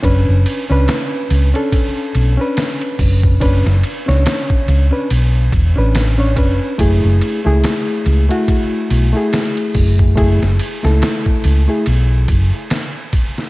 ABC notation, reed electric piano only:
X:1
M:4/4
L:1/16
Q:"Swing 16ths" 1/4=71
K:F#m
V:1 name="Reed electric piano"
[CDB]3 [CDB]4 [CDA]4 [CDB]4- [CDB] | [CDB] z2 [CDc]4 [CDB] z3 [CDB]2 [CDc] [CDB]2 | [A,EG]3 [A,EG]4 [A,EF]4 [A,EG]4- [A,EG] | [A,EG] z2 [A,EA]4 [A,EG] z8 |]